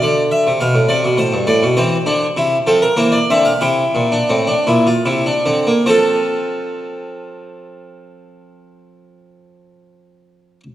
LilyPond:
<<
  \new Staff \with { instrumentName = "Harpsichord" } { \time 6/8 \key c \mixolydian \tempo 4. = 54 << { d''8 e''8 f''8 d''8 c''8 d''8 | \key f \major c''4. a'16 bes'16 c''16 d''16 e''16 f''16 | g''2. | <f' a' c''>2.~ |
<f' a' c''>2. | } \\ { r2. | c'8 d'8 e'8 c'8 bes8 c'8 | e'8. d'16 c'16 d'16 e'16 f'16 e'16 d'16 c'16 bes16 | c'2.~ |
c'2. | } >> }
  \new Staff \with { instrumentName = "Harpsichord" } { \clef bass \time 6/8 \key c \mixolydian d8. c16 b,16 a,16 c16 b,16 a,16 g,16 a,16 b,16 | \key f \major e8 d8 c8 f8 e8 d8 | c8 bes,8 a,8 bes,8 c8 d8 | f2.~ |
f2. | }
>>